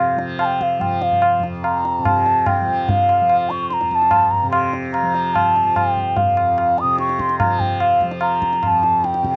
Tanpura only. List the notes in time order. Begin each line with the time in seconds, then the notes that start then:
Already playing: F2 C3 F3
0.16 F3
0.79 F3
1.39 F2
1.99 C3
2.61 F3
3.21 F3
3.82 F2
4.43 C3
5.02 F3
5.63 F3
6.23 F2
6.83 C3
7.42 F3
8.03 F3
8.64 F2
9.23 C3